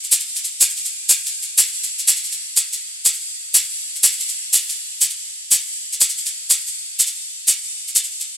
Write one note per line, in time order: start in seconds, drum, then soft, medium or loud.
0.04 shaker soft
0.12 shaker medium
0.20 shaker soft
0.36 shaker soft
0.44 shaker soft
0.61 shaker medium
0.69 shaker soft
0.77 shaker soft
0.85 shaker soft
1.09 shaker medium
1.26 shaker soft
1.42 shaker soft
1.58 shaker medium
1.83 shaker soft
1.99 shaker soft
2.08 shaker medium
2.16 shaker soft
2.24 shaker soft
2.32 shaker soft
2.57 shaker medium
2.73 shaker soft
3.05 shaker medium
3.14 shaker soft
3.54 shaker medium
3.96 shaker soft
4.03 shaker medium
4.12 shaker soft
4.20 shaker soft
4.29 shaker soft
4.53 shaker medium
4.69 shaker soft
5.01 shaker medium
5.10 shaker soft
5.51 shaker medium
5.93 shaker soft
6.01 shaker medium
6.09 shaker soft
6.18 shaker soft
6.26 shaker soft
6.50 shaker medium
6.67 shaker soft
6.99 shaker medium
7.07 shaker soft
7.48 shaker medium
7.88 shaker soft
7.95 shaker medium
8.04 shaker soft
8.20 shaker soft